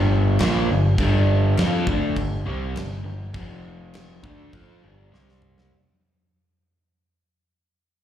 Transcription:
Already playing: picked electric bass G1, overdriven electric guitar G2 D3 G3
0.39 picked electric bass A#1, overdriven electric guitar A#2 F3 A#3, snare, crash
0.69 picked electric bass G1, overdriven electric guitar G2 D3
0.98 picked electric bass G1, overdriven electric guitar G2 D3 G3, kick, crash
1.57 picked electric bass F2, overdriven electric guitar F3 C4 F4, snare, crash
1.87 picked electric bass D2, overdriven electric guitar D3 A3 D4, kick
2.16 picked electric bass G1, overdriven electric guitar G2 D3, kick, crash
2.46 picked electric bass C2, overdriven electric guitar C3 G3 C4
2.75 picked electric bass G1, overdriven electric guitar G2 D3, snare, crash
3.04 picked electric bass G1, overdriven electric guitar G2 D3
3.34 overdriven electric guitar F2 C3 F3, kick, crash
3.94 snare, crash
4.23 picked electric bass D2, overdriven electric guitar D3 A3 D4, kick
4.53 picked electric bass F2, overdriven electric guitar F3 C4 F4, kick, crash
4.82 picked electric bass G1, overdriven electric guitar G2 D3 G3
5.11 picked electric bass C2, overdriven electric guitar C3 G3 C4, snare
5.29 snare
5.42 mid tom
5.58 snare

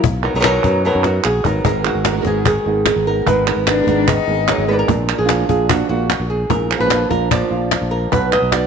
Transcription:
0.04 fretless electric bass B1, muted nylon-string guitar stroke, cajon bass
0.24 nylon-string guitar F#3 B3 D#4 A#4, cajon slap
0.34 fretless electric bass B1, nylon-string guitar D#3 F#3 B3 D#4 A#4
0.40 nylon-string guitar D#3 F#3 B3 D#4 A#4, clap
0.44 nylon-string guitar B2 D#3 F#3 B3 D#4 A#4, cajon slap
0.63 fretless electric bass F#2, cajon bass, clap
0.85 nylon-string guitar B2 D#3 F#3 B3 D#4 A#4
0.95 fretless electric bass F#2
1.04 nylon-string guitar F#3 B3 D#4 F#4 A#4, cajon slap
1.24 fretless electric bass A#1, nylon-string guitar G#4, muted nylon-string guitar stroke, clap
1.44 fretless electric bass G#1, nylon-string guitar F#3 B3 D#4 A#4, cajon bass, clap
1.64 fretless electric bass G#1, nylon-string guitar G#2 D#3 G#3 B3 D#4 A#4, cajon bass
1.84 nylon-string guitar G#3 B3 D#4 F#4 A#4, clap
1.95 fretless electric bass G#1
2.04 nylon-string guitar B3 D#4 A#4, cajon slap, clap
2.12 nylon-string guitar G#3 B3 D#4 A#4
2.16 nylon-string guitar G#3 B3 D#4 A#4
2.21 fretless electric bass G#1, nylon-string guitar G#3 B3 D#4 A#4, cajon bass, cajon slap
2.25 nylon-string guitar D#3 G#3 B3 D#4 G#4 A#4
2.45 nylon-string guitar D#3 G#4, muted nylon-string guitar stroke, cajon bass, clap
2.66 fretless electric bass G#1, nylon-string guitar B3 D#4 A#4
2.86 nylon-string guitar G#3 B3 D#4 A#4, cajon slap, clap
2.96 fretless electric bass G#1
3.07 nylon-string guitar B3 D#4 A#4
3.26 fretless electric bass G#1, nylon-string guitar D#3 G#3 B3 D#4 A#4 B4, cajon bass
3.47 nylon-string guitar B3 D#4 A#4, clap
3.56 fretless electric bass G#1
3.67 nylon-string guitar B3 D#4 A#4, cello D4, cajon slap, clap
3.78 nylon-string guitar G#3 B3 D#4 A#4
3.83 fretless electric bass G#1, nylon-string guitar G#3 B3 D#4 A#4
3.87 nylon-string guitar D#3 G#3 B3 D#4 A#4, cajon bass, cajon slap
4.07 nylon-string guitar D#3, cello D#4, muted nylon-string guitar stroke, cajon bass, clap
4.28 fretless electric bass G#1, nylon-string guitar B3 D#4 G#4 A#4, cajon slap
4.48 nylon-string guitar F#3 G#3 B3 D#4 A#4, cajon slap, clap
4.58 fretless electric bass G#1
4.68 nylon-string guitar G#3 B3 D#4 A#4 B4 D5
4.73 nylon-string guitar B4
4.79 nylon-string guitar A#4
4.88 fretless electric bass A#1, nylon-string guitar A#2 D4, muted nylon-string guitar stroke, cajon bass
5.09 clap
5.18 fretless electric bass A#1, nylon-string guitar F3 A#3 D4 F4 G#4
5.24 nylon-string guitar F3 A#3 D4 F4
5.29 nylon-string guitar F3 A#3 D4 F4 A#4, cajon slap, clap
5.49 fretless electric bass A#1, nylon-string guitar A#3 D4 F4 G#4, cajon bass
5.69 nylon-string guitar F3 A#3 D4 F4 F#4, cajon bass, clap
5.89 fretless electric bass A#1, nylon-string guitar A#3 D4 F4 F#4
6.10 muted nylon-string guitar stroke, cajon slap, clap
6.20 fretless electric bass A#1
6.30 nylon-string guitar G#4
6.50 fretless electric bass A#1, nylon-string guitar A#2 A#4, muted nylon-string guitar stroke, cajon bass, clap
6.70 nylon-string guitar F3, clap
6.77 fretless electric bass A#1, nylon-string guitar F3 A#3 D4 F4 B4
6.81 nylon-string guitar F3 A#3 D4 F4
6.86 nylon-string guitar F3 A#3 D4 F4
6.90 nylon-string guitar F3 A#3 D4 F4, cajon slap, clap
7.10 fretless electric bass A#1, nylon-string guitar A#3 D4 F4 A#4, cajon bass, cajon slap
7.30 nylon-string guitar F3 A#3 D4 F4 D5, cajon bass, clap
7.51 fretless electric bass A#1, nylon-string guitar A#3 D4 F4
7.71 nylon-string guitar D4, muted nylon-string guitar stroke, cajon slap, clap
7.81 fretless electric bass A#1
7.91 nylon-string guitar A#4
8.12 fretless electric bass B1, nylon-string guitar B2 F#3 B3 D#4 F#4 B4, cajon bass
8.32 nylon-string guitar B3 D#5, cajon slap, clap
8.42 fretless electric bass B1
8.52 nylon-string guitar B3 D#4 F#4 D5, cajon slap, clap

